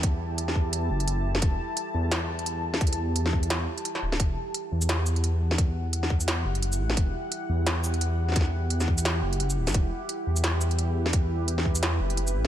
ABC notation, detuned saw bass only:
X:1
M:4/4
L:1/16
Q:"Swing 16ths" 1/4=173
K:Em
V:1 name="Detuned saw bass" clef=bass
E,,6 E,,4 F,,,6 | E,,,2 z4 E,,8- E,,2- | E,,6 E,,4 z4 D,,,2 | E,,,2 z4 E,,8- E,,2- |
E,,6 E,,4 F,,,4 A,,,2 | E,,,2 z4 E,,8- E,,2- | E,,6 E,,4 F,,,4 D,,, A,,, | E,,,2 z4 E,,8- E,,2- |
E,,6 E,,4 F,,,4 A,,,2 |]